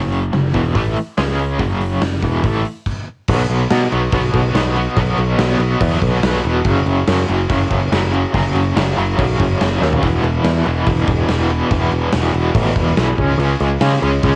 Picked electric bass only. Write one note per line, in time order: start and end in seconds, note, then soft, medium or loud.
0.00 0.30 F#1 medium
0.33 0.53 F#1 medium
0.54 0.74 E1 medium
0.75 0.95 A1 medium
1.18 1.57 C#2 medium
1.60 1.99 F#1 medium
2.01 2.21 F#1 medium
2.23 2.43 E1 medium
2.44 2.64 A1 medium
3.29 3.45 B1 loud
3.49 3.65 B1 medium
3.71 3.87 B2 medium
3.92 4.08 B1 medium
4.13 4.29 B1 medium
4.34 4.50 B1 medium
4.55 4.87 B1 loud
4.97 5.13 B1 medium
5.19 5.35 B1 medium
5.38 5.55 B1 medium
5.58 5.75 B1 medium
5.81 5.97 E2 medium
6.03 6.19 B1 medium
6.24 6.40 B1 medium
6.45 6.61 E1 medium
6.65 6.82 F#1 loud
6.86 7.02 F#1 medium
7.08 7.24 F#2 medium
7.29 7.45 F#1 medium
7.50 7.66 F#1 medium
7.71 7.87 F#1 medium
7.92 8.24 F#1 loud
8.34 8.50 F#1 loud
8.55 8.71 F#1 medium
8.76 8.92 F#1 medium
8.98 9.14 F#1 medium
9.18 9.35 B1 medium
9.40 9.56 F#1 medium
9.61 9.77 F#1 loud
9.82 9.98 D#2 medium
10.03 10.19 E1 medium
10.22 10.39 E1 medium
10.44 10.61 E2 medium
10.67 10.82 E1 medium
10.87 11.03 E1 loud
11.07 11.24 E1 medium
11.29 11.61 E1 medium
11.72 11.88 E1 medium
11.92 12.08 E1 medium
12.14 12.30 E1 medium
12.34 12.50 E1 medium
12.55 12.71 A1 loud
12.76 12.92 E1 medium
12.97 13.13 B1 medium
13.18 13.35 C#2 medium
13.38 13.55 C#2 medium
13.60 13.77 C#2 medium
13.81 13.97 C#3 loud
14.02 14.18 C#2 medium
14.24 14.36 C#2 loud